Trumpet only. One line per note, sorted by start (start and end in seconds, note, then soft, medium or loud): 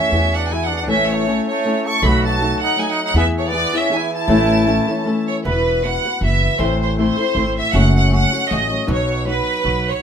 0.00 0.38 C#4 medium
0.36 0.54 D4 medium
0.53 0.69 E4 medium
0.67 0.78 D4 medium
0.81 0.86 D4 medium
0.90 1.15 C#4 medium
1.14 1.49 A3 medium
1.50 1.89 A3 medium
1.87 2.09 A4 medium
2.08 2.26 F#4 medium
2.27 2.60 F#4 medium
2.63 2.78 D#4 medium
2.78 2.88 D#4 medium
2.88 3.02 D#4 medium
3.02 3.14 D#4 medium
3.16 3.25 B3 medium
3.38 3.50 A3 medium
3.48 3.80 B3 medium
3.78 3.98 C#4 medium
3.97 4.13 E4 medium
4.13 5.24 E4 medium